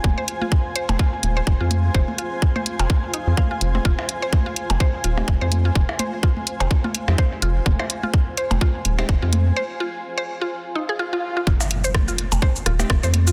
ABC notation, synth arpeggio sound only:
X:1
M:4/4
L:1/16
Q:"Swing 16ths" 1/4=126
K:Fm
V:1 name="Synth arpeggio sound"
z c z F z2 c z F z2 c z F z2 | c z F z2 c z F z2 E z f F z C | F z2 c z F z2 c z F z2 c z F | z2 c z F z2 c z F z2 c z F z |
z c z F z2 c z F z2 c z F z2 | c z F z2 c z F z2 E A F F z F | F z2 c z F z2 c z F z2 c z F |]